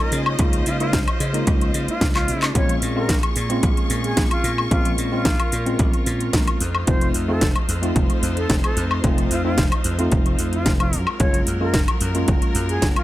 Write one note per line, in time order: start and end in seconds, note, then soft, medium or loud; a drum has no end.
0.00 0.35 G#3 medium
0.00 0.36 A#3 medium
0.00 2.51 C#4 medium
0.00 0.36 D#4 medium
0.00 0.36 F4 loud
0.00 10.89 F4 medium
0.00 0.18 A#4 medium
0.00 2.51 D#5 medium
0.12 0.35 C#3 loud
0.12 2.53 C5 medium
0.12 open hi-hat loud
0.26 high woodblock medium
0.38 0.62 C#2 loud
0.38 0.76 G#3 loud
0.38 0.77 A#3 medium
0.38 0.77 D#4 medium
0.38 0.77 F4 loud
0.38 kick loud
0.38 closed hi-hat medium
0.53 closed hi-hat medium
0.66 0.95 C#3 medium
0.66 0.77 F4 medium
0.66 open hi-hat loud
0.79 0.92 G#3 medium
0.79 0.92 A#3 medium
0.79 0.92 D#4 medium
0.79 0.99 F4 medium
0.79 0.92 F4 medium
0.79 closed hi-hat soft
0.93 1.05 C#2 medium
0.93 kick loud
0.93 snare loud
0.93 closed hi-hat medium
1.08 closed hi-hat soft
1.08 high woodblock medium
1.20 1.43 C#3 medium
1.20 open hi-hat loud
1.33 2.52 G#3 loud
1.33 2.52 A#3 medium
1.33 2.52 D#4 medium
1.33 2.52 F4 loud
1.33 closed hi-hat medium
1.47 1.70 C#2 loud
1.47 kick loud
1.47 closed hi-hat medium
1.61 closed hi-hat soft
1.74 1.86 C#3 loud
1.74 open hi-hat loud
1.88 2.07 F4 medium
1.88 muted slap bass stroke soft
1.88 closed hi-hat soft
2.01 2.30 C#2 medium
2.01 kick loud
2.01 snare loud
2.01 closed hi-hat medium
2.15 2.54 F4 medium
2.15 clap medium
2.15 closed hi-hat soft
2.15 high woodblock medium
2.28 2.51 C#3 medium
2.28 open hi-hat loud
2.42 clap medium
2.42 closed hi-hat soft
2.42 high woodblock medium
2.54 2.78 A#1 loud
2.54 2.92 G#3 loud
2.54 6.57 A#3 medium
2.54 2.93 C4 medium
2.54 2.93 C#4 medium
2.54 2.93 F4 loud
2.54 4.70 G#4 medium
2.54 2.75 C#5 medium
2.54 6.57 C#6 medium
2.54 kick loud
2.54 closed hi-hat medium
2.69 closed hi-hat medium
2.82 3.11 A#2 medium
2.82 open hi-hat loud
2.95 3.08 G#3 medium
2.95 3.08 C4 medium
2.95 3.08 C#4 medium
2.95 3.08 F4 loud
2.95 3.16 A#4 medium
3.09 3.21 A#1 medium
3.09 kick loud
3.09 snare loud
3.09 closed hi-hat medium
3.23 closed hi-hat soft
3.23 high woodblock medium
3.36 3.59 A#2 medium
3.36 open hi-hat loud
3.49 4.68 G#3 loud
3.49 4.68 C4 medium
3.49 4.68 C#4 medium
3.49 4.69 F4 loud
3.49 closed hi-hat medium
3.63 3.75 A#1 medium
3.63 kick loud
3.63 closed hi-hat medium
3.77 closed hi-hat soft
3.90 4.13 A#2 medium
3.90 open hi-hat loud
4.04 4.24 G#4 medium
4.04 closed hi-hat soft
4.17 4.29 A#1 medium
4.17 kick loud
4.17 snare loud
4.17 closed hi-hat medium
4.31 4.51 F4 medium
4.31 closed hi-hat soft
4.31 high woodblock medium
4.44 4.67 A#2 loud
4.44 open hi-hat loud
4.58 high woodblock medium
4.71 4.94 A#1 loud
4.71 5.09 G#3 loud
4.71 5.09 C4 medium
4.71 5.09 C#4 medium
4.71 4.91 F4 loud
4.71 5.09 F4 loud
4.71 6.59 A#4 medium
4.71 kick loud
4.71 closed hi-hat medium
4.85 closed hi-hat medium
4.98 5.27 A#2 medium
4.98 open hi-hat loud
5.12 5.24 G#3 medium
5.12 5.24 C4 medium
5.12 5.25 C#4 medium
5.12 5.67 F4 loud
5.12 5.25 F4 loud
5.25 5.37 A#1 medium
5.25 kick loud
5.25 snare loud
5.25 closed hi-hat medium
5.40 closed hi-hat soft
5.40 high woodblock medium
5.52 5.75 A#2 medium
5.52 open hi-hat loud
5.65 6.58 G#3 loud
5.65 6.59 C4 medium
5.65 6.59 C#4 medium
5.65 6.59 F4 loud
5.65 closed hi-hat medium
5.79 5.91 A#1 medium
5.79 kick loud
5.79 closed hi-hat medium
5.94 closed hi-hat soft
6.06 6.29 A#2 loud
6.06 open hi-hat loud
6.21 closed hi-hat soft
6.33 6.45 A#1 medium
6.33 kick loud
6.33 snare loud
6.33 closed hi-hat medium
6.48 closed hi-hat soft
6.48 high woodblock medium
6.60 6.83 F2 loud
6.60 10.89 A3 medium
6.60 10.89 D#4 medium
6.60 10.89 C5 loud
6.60 open hi-hat loud
6.75 high woodblock medium
6.87 7.10 F1 loud
6.87 7.25 A3 loud
6.87 7.25 C4 medium
6.87 7.25 D#4 medium
6.87 7.26 F4 loud
6.87 7.08 C5 loud
6.87 kick loud
6.87 closed hi-hat medium
7.01 closed hi-hat medium
7.14 7.43 F2 medium
7.14 open hi-hat loud
7.28 7.41 A3 medium
7.28 7.41 C4 medium
7.28 7.41 D#4 medium
7.28 7.41 F4 loud
7.28 7.48 A4 medium
7.41 7.53 F1 medium
7.41 kick loud
7.41 snare loud
7.41 closed hi-hat medium
7.56 closed hi-hat soft
7.56 high woodblock medium
7.69 7.91 F2 medium
7.69 open hi-hat loud
7.82 9.00 A3 medium
7.82 9.01 C4 medium
7.82 9.01 D#4 medium
7.82 9.01 F4 loud
7.82 closed hi-hat medium
7.96 8.07 F1 medium
7.96 kick loud
7.96 closed hi-hat medium
8.10 closed hi-hat soft
8.23 8.45 F2 loud
8.23 open hi-hat loud
8.37 8.56 A4 loud
8.37 closed hi-hat soft
8.50 8.61 F1 medium
8.50 kick loud
8.50 snare loud
8.50 closed hi-hat medium
8.64 8.83 A4 medium
8.64 closed hi-hat soft
8.64 high woodblock medium
8.77 8.99 F2 loud
8.77 open hi-hat loud
8.91 high woodblock medium
9.03 9.26 F1 loud
9.03 9.41 A3 medium
9.03 9.42 C4 medium
9.03 9.42 D#4 medium
9.03 9.42 F4 loud
9.03 kick loud
9.03 closed hi-hat medium
9.18 closed hi-hat medium
9.31 9.59 F2 medium
9.31 9.42 F4 medium
9.31 open hi-hat loud
9.44 9.57 A3 medium
9.44 9.57 C4 medium
9.44 9.57 D#4 medium
9.44 9.64 F4 medium
9.44 9.57 F4 loud
9.58 9.70 F1 medium
9.58 kick loud
9.58 snare loud
9.58 closed hi-hat medium
9.72 closed hi-hat soft
9.72 high woodblock medium
9.84 10.07 F2 medium
9.84 open hi-hat loud
9.98 10.91 A3 loud
9.98 10.91 C4 medium
9.98 10.92 D#4 medium
9.98 10.92 F4 loud
9.98 closed hi-hat soft
10.12 10.35 F1 medium
10.12 kick loud
10.12 closed hi-hat medium
10.26 closed hi-hat soft
10.39 10.67 F2 medium
10.39 open hi-hat loud
10.53 10.72 F4 medium
10.53 closed hi-hat soft
10.66 10.94 F1 medium
10.66 kick loud
10.66 snare loud
10.66 closed hi-hat medium
10.80 10.99 F4 medium
10.80 closed hi-hat soft
10.80 high woodblock medium
10.93 11.05 F#2 medium
10.93 13.03 F#3 medium
10.93 13.03 G#3 medium
10.93 13.03 F4 medium
10.93 13.03 A#4 medium
10.93 open hi-hat loud
11.07 high woodblock medium
11.20 11.43 F#1 loud
11.20 11.58 G#3 loud
11.20 11.58 A#3 medium
11.20 11.58 C#4 medium
11.20 11.58 F4 loud
11.20 11.40 C#5 medium
11.20 kick loud
11.20 closed hi-hat medium
11.34 closed hi-hat medium
11.47 11.76 F#2 medium
11.47 open hi-hat loud
11.61 11.73 G#3 medium
11.61 11.73 A#3 medium
11.61 11.73 C#4 medium
11.61 11.74 F4 medium
11.61 11.81 A#4 medium
11.74 11.86 F#1 medium
11.74 kick loud
11.74 snare loud
11.74 closed hi-hat medium
11.88 closed hi-hat soft
11.88 high woodblock medium
12.01 12.24 F#2 medium
12.01 open hi-hat loud
12.14 13.03 G#3 medium
12.14 13.03 A#3 medium
12.14 13.03 C#4 medium
12.14 13.03 F4 loud
12.14 closed hi-hat soft
12.28 12.40 F#1 medium
12.28 kick loud
12.28 closed hi-hat medium
12.42 closed hi-hat soft
12.55 12.78 F#2 loud
12.55 open hi-hat loud
12.69 12.88 G#4 medium
12.69 closed hi-hat soft
12.82 12.94 F#1 medium
12.82 kick loud
12.82 snare loud
12.82 closed hi-hat medium
12.96 13.03 F4 medium
12.96 closed hi-hat soft
12.96 high woodblock medium